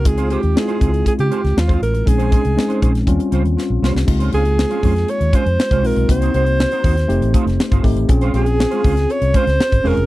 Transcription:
<<
  \new Staff \with { instrumentName = "Alto saxophone" } { \time 4/4 \key des \lydian \tempo 4 = 119 aes'8 g'8 aes'4 aes'16 g'8. f'8 bes'8 | aes'2 r2 | r8 aes'4. des''8 c''4 bes'8 | c''2.~ c''8 r8 |
r8 aes'4. des''8 c''4 bes'8 | }
  \new Staff \with { instrumentName = "Clean electric guitar" } { \time 4/4 \key des \lydian r16 <c' f' aes' c''>16 <c' f' aes' c''>16 r8 <c' f' aes' c''>16 <c' f' aes' c''>16 r8. <c' f' aes' c''>16 r8 <c' f' aes' c''>16 r8 | r16 <des' ees' aes' c''>16 <des' ees' aes' c''>16 r8 <des' ees' aes' c''>16 <des' ees' aes' c''>16 r8. <g des' f' c''>16 r8. <g des' f' c''>16 r16 | r16 <aes des' f' c''>16 <aes des' f' c''>16 r8 <aes des' f' c''>16 <aes des' f' c''>16 r8. <aes des' f' c''>16 r8 <aes des' f' c''>16 r8 | r16 <bes ees' ges' c''>16 <bes ees' ges' c''>16 r8 <bes ees' ges' c''>16 <bes ees' ges' c''>16 r8. <a ees' f' c''>16 r8 <a ees' f' c''>16 r8 |
r16 <aes des' f' c''>16 <aes des' f' c''>16 r8 <aes des' f' c''>16 <aes des' f' c''>16 r8. <aes des' f' c''>16 r8. <aes des' f' c''>16 r16 | }
  \new Staff \with { instrumentName = "Tine electric piano" } { \time 4/4 \key des \lydian << { r1 | r2. f'8 <bes g'>8~ | <bes g'>8 r2. r8 | r1 |
r1 | } \\ { <aes c' ees' f'>8. r16 <aes c' ees' fes' f'>4. r4. | <aes c' des' ees'>8. r16 <aes c' des' ees'>4 <g c' des' f'>4. r8 | <aes c' ees' f'>4. r2 <aes c' ees' f'>8 | <bes c' ees' ges'>4. r8 <a c' ees' g'>4 r8 <a c' ees' g'>8 |
<c' des' f' aes'>4. r2 <c' des' f' aes'>8 | } >> }
  \new Staff \with { instrumentName = "Fingered electric bass" } { \clef bass \time 4/4 \key des \lydian des,8. ees,16 r8 des,8 r16 des16 r16 des,16 ees,8 a,,8 | bes,,8. c,16 r8 bes,,8 ees,16 r16 des,16 ees,16 r16 bes,,16 c,16 c,16 | des,8 des,8. r16 f,8 r16 ees,16 r16 f,16 r16 c,16 bes,,16 ces,16 | c,8 c,8. r16 ees,8 f,,16 a,,16 r16 f,,16 r16 g,,16 aes,,16 a,,16 |
bes,,8 bes,,8. r16 des,8 r16 c,16 r16 des,16 r16 aes,,16 fes,,16 f,,16 | }
  \new DrumStaff \with { instrumentName = "Drums" } \drummode { \time 4/4 <hh bd>16 hh16 hh16 hh16 sn16 hh16 <hh bd>16 hh16 <hh bd>16 hh16 hh16 <hh sn>16 sn16 <hh bd>16 hh16 hh16 | <hh bd>16 hh16 <hh bd>16 hh16 sn16 hh16 <hh bd>16 <hh sn>16 <hh bd>16 hh16 hh16 hh16 sn8 sn16 sn16 | <cymc bd>16 hh16 hh16 hh16 sn16 hh16 <hho bd>16 <hh sn>16 hh16 hh16 <hh bd>16 hh16 sn16 <hh bd>16 hho16 hh16 | <hh bd>16 hh16 hh16 hh16 sn16 hh16 <hho bd>16 <hh sn>16 hh16 hh16 <hh bd>16 <hh sn>16 sn16 <hh bd>16 <hho bd>16 hh16 |
<hh bd>16 hh16 hh16 hh16 sn16 hh16 <hho bd>16 <hh sn>16 hh16 hh16 <hh bd>16 <hh sn>16 sn16 <hh bd>16 hho16 hh16 | }
>>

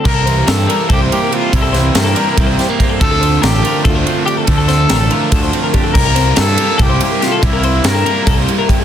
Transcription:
<<
  \new Staff \with { instrumentName = "Clean electric guitar" } { \time 7/8 \key c \mixolydian \tempo 4 = 142 r16 a'16 c''8 bes'16 a'16 bes'8 a'16 c''8 bes'16 g'16 a'16 | r16 a'16 c''8 bes'16 a'16 bes'8 a'16 c''8 bes'16 g'16 a'16 | r16 a'16 c''8 bes'16 a'16 bes'8 a'16 c''8 bes'16 g'16 a'16 | r16 a'16 c''8 bes'16 a'16 bes'8 a'16 c''8 bes'16 g'16 a'16 |
r16 bes'16 c''8 bes'16 a'16 bes'8 a'16 c''8 bes'16 g'16 a'16 | r16 bes'16 c''8 bes'16 a'16 bes'8 a'16 c''8 bes'16 g'16 a'16 | }
  \new Staff \with { instrumentName = "Trumpet" } { \time 7/8 \key c \mixolydian bes'4 a'4 g'8 g'8 f'8 | e'4 bes'4. r4 | a'4 g'4 f'8 f'8 g'8 | a'2~ a'8 r4 |
bes'4 a'4 g'8 g'8 f'8 | e'4 bes'4. r4 | }
  \new Staff \with { instrumentName = "Clean electric guitar" } { \time 7/8 \key c \mixolydian << { r4 a16 c'16 d'16 e'16 c'8 bes8 c'8 | r4 a16 c'16 d'16 e'16 c'8 g16 bes16 c'8 | <d c' d' f'>4 d'8 f'8 d'8 c'8 d'8 | r4 d'8 f'8 d'8 c'8 d'8 |
r2. r8 | r2. r8 | } \\ { r8 e2. | c8 e2. | d,8 d2. | d,8 d2. |
r2. r8 | r2. r8 | } >> }
  \new Staff \with { instrumentName = "Overdriven electric guitar" } { \time 7/8 \key c \mixolydian <c g bes e' g'>4. <c g bes e' g'>2 | <c g bes e' g'>4. <c g bes e' g'>2 | <d f a d'>4. <d f a d'>2 | <d f a d'>4. <d f a d'>2 |
<c g bes e'>4. <c g bes e'>2 | <c g bes e'>4. <c g bes e'>2 | }
  \new Staff \with { instrumentName = "Picked electric bass" } { \clef bass \time 7/8 \key c \mixolydian c,4 g,8 r8 c,8 r4 | c,4 g,8 r8 c,8 r4 | d,4 a,,8 r8 d,8 r4 | d,4 a,,8 r8 d,8 r4 |
c,4 g,8 r8 c,8 r4 | c,4 g,8 r8 c,8 r4 | }
  \new DrumStaff \with { instrumentName = "Drums" } \drummode { \time 7/8 <cymc bd>8 cymr8 <cymr sn>8 cymr8 <bd cymr>8 cymr8 cymr8 | <bd cymr>8 <cymr sn>8 <cymr sn>8 cymr8 <bd cymr>8 <cymr sn>8 <bd cymr>8 | <bd cymr>8 cymr8 <cymr sn>8 cymr8 <bd cymr>8 cymr8 cymr8 | <bd cymr>8 <cymr sn>8 <cymr sn>8 cymr8 <bd cymr>8 cymr8 <bd cymr>8 |
<cymc bd>8 <cymr sn>8 <cymr sn>8 cymr8 <bd cymr>8 cymr8 <cymr sn>8 | <bd cymr>8 cymr8 <cymr sn>8 cymr8 <bd cymr>8 cymr8 <bd cymr>8 | }
>>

